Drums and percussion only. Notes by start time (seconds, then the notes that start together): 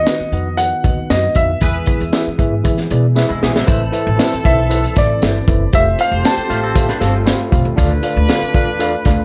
0.06 snare, closed hi-hat, tambourine
0.32 closed hi-hat
0.58 closed hi-hat, tambourine
0.84 kick, closed hi-hat
1.10 snare, closed hi-hat, tambourine
1.35 kick, closed hi-hat
1.61 kick, closed hi-hat, tambourine
1.86 kick, closed hi-hat
2.00 closed hi-hat
2.13 snare, closed hi-hat, tambourine
2.39 kick, closed hi-hat
2.65 kick, closed hi-hat, tambourine
2.78 snare, closed hi-hat
2.90 closed hi-hat
3.16 snare, tambourine
3.43 snare
3.56 snare
3.67 kick, closed hi-hat, tambourine
3.93 closed hi-hat
4.19 snare, closed hi-hat, tambourine
4.32 closed hi-hat
4.45 kick, closed hi-hat
4.71 closed hi-hat, tambourine
4.84 closed hi-hat
4.96 kick, snare, closed hi-hat
5.22 snare, closed hi-hat, tambourine
5.48 kick, closed hi-hat
5.73 kick, closed hi-hat, tambourine
5.99 closed hi-hat
6.25 snare, closed hi-hat, tambourine
6.37 closed hi-hat
6.51 closed hi-hat
6.76 kick, closed hi-hat, tambourine
6.89 snare, closed hi-hat
7.01 snare, closed hi-hat
7.27 snare, closed hi-hat, tambourine
7.52 kick, closed hi-hat
7.78 kick, closed hi-hat, tambourine
8.03 closed hi-hat
8.29 snare, closed hi-hat, tambourine
8.41 closed hi-hat
8.54 kick, closed hi-hat
8.80 closed hi-hat, tambourine
9.05 kick, snare, closed hi-hat